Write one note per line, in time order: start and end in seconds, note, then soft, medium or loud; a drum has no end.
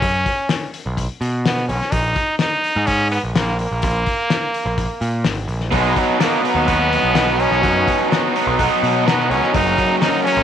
0.00 0.23 F#2 medium
0.00 0.74 C#4 medium
0.00 kick loud
0.00 open hi-hat medium
0.26 kick medium
0.26 open hi-hat soft
0.49 snare loud
0.49 open hi-hat medium
0.74 open hi-hat medium
0.86 1.06 B1 medium
0.97 kick medium
0.97 open hi-hat medium
1.21 1.70 B2 medium
1.21 open hi-hat soft
1.46 1.67 B3 medium
1.46 snare loud
1.46 open hi-hat medium
1.57 snare soft
1.68 1.79 B1 medium
1.68 1.93 C#4 medium
1.68 open hi-hat soft
1.81 snare soft
1.92 2.13 A#1 medium
1.92 2.39 D#4 loud
1.92 kick loud
1.92 open hi-hat medium
2.16 kick medium
2.16 open hi-hat soft
2.39 2.88 D#4 medium
2.39 snare loud
2.39 open hi-hat medium
2.64 open hi-hat soft
2.76 3.17 G#2 loud
2.87 3.11 C#4 medium
2.87 kick medium
2.87 open hi-hat medium
3.12 3.22 B3 medium
3.12 open hi-hat medium
3.23 3.34 A#1 medium
3.35 3.66 A#1 loud
3.35 3.58 A#3 medium
3.35 snare loud
3.35 open hi-hat medium
3.48 snare soft
3.59 5.46 A#3 medium
3.59 open hi-hat soft
3.71 3.81 A#1 medium
3.82 4.03 A#1 medium
3.82 kick loud
3.82 open hi-hat medium
4.06 kick medium
4.06 open hi-hat soft
4.30 snare medium
4.30 open hi-hat medium
4.54 open hi-hat medium
4.66 4.86 A#1 medium
4.78 kick medium
4.78 open hi-hat medium
5.01 5.24 A#2 medium
5.01 open hi-hat soft
5.25 5.46 G#1 medium
5.25 snare loud
5.25 open hi-hat medium
5.48 5.70 A#1 medium
5.48 open hi-hat soft
5.60 snare soft
5.71 5.93 B1 medium
5.71 7.14 B2 medium
5.71 6.18 F#3 loud
5.71 6.00 G#3 medium
5.71 6.19 B3 loud
5.71 6.20 D#4 loud
5.71 6.20 F#4 loud
5.71 kick loud
5.71 open hi-hat medium
5.96 6.22 F#3 medium
5.96 kick medium
5.96 open hi-hat soft
6.18 6.66 F#3 medium
6.18 6.44 A#3 medium
6.18 6.44 B3 medium
6.18 6.44 D#4 medium
6.18 6.43 F#4 medium
6.18 snare loud
6.18 open hi-hat medium
6.43 7.43 B3 loud
6.43 6.66 B3 medium
6.43 6.66 D#4 medium
6.43 6.69 F#4 medium
6.43 open hi-hat medium
6.55 6.96 D#2 loud
6.66 7.14 F#3 medium
6.66 7.14 B3 medium
6.66 7.14 D#4 medium
6.66 7.16 F#4 medium
6.66 kick medium
6.66 open hi-hat medium
6.93 open hi-hat soft
7.03 7.13 B1 medium
7.14 7.46 B1 loud
7.14 7.60 B2 medium
7.14 7.62 F#3 medium
7.14 7.38 B3 medium
7.14 7.38 D#4 medium
7.14 7.37 F#4 loud
7.14 snare loud
7.14 open hi-hat medium
7.38 7.61 B3 medium
7.38 8.35 C#4 loud
7.38 7.62 D#4 medium
7.38 7.63 F#4 medium
7.38 open hi-hat soft
7.51 7.61 B1 medium
7.51 snare soft
7.61 7.84 F#2 medium
7.61 8.34 B2 loud
7.61 8.09 F#3 loud
7.61 8.10 B3 loud
7.61 8.10 D#4 loud
7.61 8.12 F#4 loud
7.61 kick loud
7.61 open hi-hat medium
7.87 kick medium
7.87 open hi-hat soft
8.10 8.58 F#3 medium
8.10 8.36 B3 medium
8.10 8.35 D#4 medium
8.10 8.34 F#4 medium
8.10 snare loud
8.10 open hi-hat medium
8.35 8.58 B3 medium
8.35 8.59 D#4 medium
8.35 8.60 F#4 medium
8.35 open hi-hat medium
8.47 8.67 B1 medium
8.58 9.06 F#3 medium
8.58 9.06 B3 medium
8.58 9.06 D#4 medium
8.58 9.07 F#4 medium
8.58 kick medium
8.58 open hi-hat medium
8.83 9.31 B2 medium
8.83 open hi-hat soft
9.05 9.52 B2 medium
9.05 9.55 F#3 medium
9.05 9.32 B3 medium
9.05 9.31 B3 loud
9.05 9.30 D#4 loud
9.05 9.30 F#4 loud
9.05 snare loud
9.05 open hi-hat medium
9.20 snare soft
9.30 9.40 C#2 medium
9.30 9.53 B3 medium
9.30 9.56 C#4 medium
9.30 9.53 D#4 medium
9.30 9.56 F#4 medium
9.30 open hi-hat soft
9.43 snare soft
9.54 9.75 F#1 medium
9.54 10.43 F#2 loud
9.54 10.26 C#3 medium
9.54 10.02 F#3 medium
9.54 10.02 A#3 loud
9.54 10.04 C#4 loud
9.54 9.99 D#4 loud
9.54 10.05 F#4 loud
9.54 kick loud
9.54 open hi-hat medium
9.78 kick medium
9.78 open hi-hat medium
10.00 10.27 F#3 medium
10.00 10.27 A#3 medium
10.00 10.23 D#4 medium
10.00 snare medium
10.00 open hi-hat medium
10.04 10.26 C#4 medium
10.04 10.25 F#4 medium
10.24 10.43 F#3 medium
10.24 10.43 A#3 medium
10.24 10.43 C#4 loud
10.24 10.43 C#4 medium
10.24 10.43 F#4 medium
10.24 open hi-hat medium
10.37 10.43 A#1 loud